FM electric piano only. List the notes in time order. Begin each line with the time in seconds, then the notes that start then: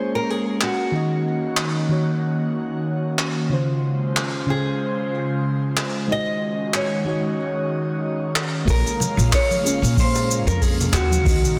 Already playing: A#3 C#4 F4 G#4 C#5
0.91 D#3 D#4 F#4
0.96 D#5
1.89 D#3 D#4 F#4 C#5
3.49 C#3 C#4 F4 C5
4.46 C#3 C#4 F4
4.50 C5
6.08 G#3 D#4 F#4 D#5
7.05 G#3 D#4 F#4 C#5
8.65 A#3 F4 G#4
8.69 C#5
9.63 A#3 C#4 F4 G#4
11.23 D#3 D#4 F#4 D#5